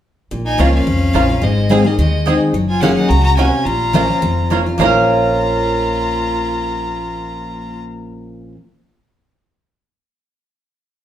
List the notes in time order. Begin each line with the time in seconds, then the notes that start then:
0.31 A#1 A#2
0.45 D#4 G#5
0.58 C#2 F3 A#3 C#4 F4 C#5 F5 A#5
0.74 C#4 F5
0.87 C2 F2
1.13 A#1 F3 A#3 C#4 F4 C#5 A#5
1.29 C#4 F4
1.42 G#1 G#2 G#3 D#5
1.69 G#3 C4 D#4 G#4 D#5 F5 G#5
1.85 A#3 D#4 G#4 D#5
1.98 D#2 D#3 G#3 D#5
2.25 G#3 C4 D#4 G#4 D#5 G#5
2.53 F#1 F#3
2.69 F4 G#5
2.81 F#3 A#3 C#4 F#4 G#4 C#5 F#5 G#5
2.96 D#4 F#5
3.08 C#2 C#3 F#4 A#5
3.23 F#4 A#5
3.36 C3 A#3 C#4 F#4 C#5 G#5
3.64 A#1 A#2 F4 A#5
3.93 F3 A#3 C#4 F4 C#5 A#5
4.22 F1 F2
4.50 F3 A#3 C#4 F4 C#5 A#5
4.66 C#4 F4
4.78 A#1 A#2 F3 A#3 C#4 F4 C#5 A#5
4.84 F4 A#4